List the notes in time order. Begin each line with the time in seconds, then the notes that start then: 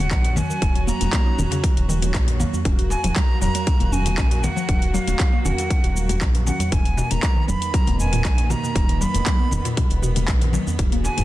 Already playing: D#1 F#3 C#4 F#4 F#5
0.00 C#3
0.11 A#1 D#3, kick, clap, closed hi-hat, shaker
0.24 closed hi-hat, djembe tone
0.36 D#3 G#5, muted conga, djembe slap, high conga, low conga, shaker
0.50 D#3, shaker
0.62 D#1, kick, closed hi-hat, djembe tone, shaker
0.75 F#3, closed hi-hat
0.87 A#3 A#5, muted conga, djembe slap, high conga, shaker
1.01 D#1, closed hi-hat, djembe tone, high conga, shaker
1.13 A#3, kick, clap, closed hi-hat, shaker
1.26 D#4
1.38 D#1, djembe tone, djembe bass, low conga, shaker
1.51 C#3, closed hi-hat, djembe slap, muted conga, shaker
1.64 D#3, kick, closed hi-hat, shaker
1.77 D#1, closed hi-hat, muted conga
1.89 D#3, high conga, shaker
2.02 D#3, closed hi-hat, muted conga, djembe tone, high conga, shaker
2.14 A#1, kick, clap, closed hi-hat, shaker
2.27 F#3, closed hi-hat, djembe tone
2.40 A#3, djembe slap, muted conga, low conga, shaker
2.53 djembe bass, shaker
2.65 D#1 F#3 A#3 C#4 F#4, kick, closed hi-hat, muted conga, djembe tone, shaker
2.78 F#4, closed hi-hat
2.90 G#5, djembe slap, muted conga, high conga, shaker
3.03 D#1 F3, closed hi-hat, djembe tone, high conga, shaker
3.16 F#3 A#5, kick, clap, closed hi-hat, shaker
3.41 D#1 F#3 A#5, djembe tone, djembe bass, shaker
3.55 F#3, closed hi-hat, muted conga, shaker
3.67 kick, closed hi-hat, shaker
3.80 D#1 A#3, closed hi-hat, muted conga, high conga
3.92 C#4 G#5, high conga, djembe tone, djembe bass, shaker
4.06 closed hi-hat, muted conga, high conga, low conga, shaker
4.18 A#1 C#4, kick, clap, closed hi-hat, shaker
4.31 F#4, closed hi-hat, djembe tone
4.43 F#5, muted conga, djembe slap, high conga, low conga, shaker
4.56 F3, shaker
4.69 D#1 F#3, kick, closed hi-hat, muted conga, djembe tone, shaker
4.82 closed hi-hat
4.94 F#3 F5, muted conga, djembe slap, high conga, shaker
5.07 D#1 F#3, closed hi-hat, high conga, djembe tone, shaker
5.20 kick, clap, closed hi-hat, muted conga, shaker
5.33 A#3
5.45 D#1 C#4 F#5, djembe tone, low conga, djembe bass, shaker
5.58 closed hi-hat, muted conga, djembe slap, shaker
5.70 C#4, kick, closed hi-hat, shaker
5.84 D#1 F#4, closed hi-hat, muted conga
5.96 high conga, shaker
6.09 F#4, closed hi-hat, muted conga, djembe tone, high conga, shaker
6.21 A#1 F3, kick, clap, closed hi-hat, shaker
6.34 closed hi-hat, djembe tone
6.46 C#4 F#5, djembe slap, muted conga, low conga, shaker
6.59 F#3, closed hi-hat, djembe bass, shaker
6.72 D#1 B2 D#3 A#3 B3 G#5, kick, closed hi-hat, shaker
6.85 closed hi-hat
6.97 B2, muted conga, djembe slap, high conga, shaker
7.10 D#1 B2 A#5, closed hi-hat, djembe tone, high conga, shaker
7.23 kick, clap, closed hi-hat, shaker
7.36 D#3
7.48 D#1 F#3 B5, djembe tone, djembe bass, shaker
7.61 closed hi-hat, muted conga, shaker
7.74 F#3 A#5, kick, closed hi-hat, shaker
7.87 D#1 B3, closed hi-hat, muted conga, high conga
7.98 G#5, high conga, djembe tone, djembe bass, shaker
8.12 A#2, closed hi-hat, muted conga, high conga, low conga, shaker
8.25 A#1, kick, clap, closed hi-hat, shaker
8.37 closed hi-hat, djembe tone
8.50 B2 A#5, muted conga, djembe slap, high conga, low conga, shaker
8.63 B2, shaker
8.75 D#1, kick, closed hi-hat, muted conga, djembe tone, shaker
8.89 D#3, closed hi-hat
9.01 F#3 B5, djembe slap, muted conga, high conga, shaker
9.14 D#1, closed hi-hat, djembe tone, high conga, shaker
9.26 F#3, kick, clap, closed hi-hat, muted conga, shaker
9.40 B3
9.51 D#1, djembe tone, low conga, djembe bass, shaker
9.65 A#2, closed hi-hat, djembe slap, muted conga, shaker
9.77 B2, kick, closed hi-hat, shaker
9.90 D#1, closed hi-hat, muted conga
10.03 B2, high conga, shaker
10.15 B2, closed hi-hat, muted conga, djembe tone, high conga, shaker
10.28 A#1, kick, clap, closed hi-hat, shaker
10.41 D#3, closed hi-hat, djembe tone
10.53 F#3, muted conga, djembe slap, low conga, shaker
10.67 djembe bass, shaker
10.79 D#1 D3 F3 F#4 G#4, kick, closed hi-hat, muted conga, shaker
10.92 A#3, closed hi-hat
11.04 G#5, muted conga, djembe slap, high conga, shaker
11.17 D#1 G#2, closed hi-hat, high conga, djembe tone, shaker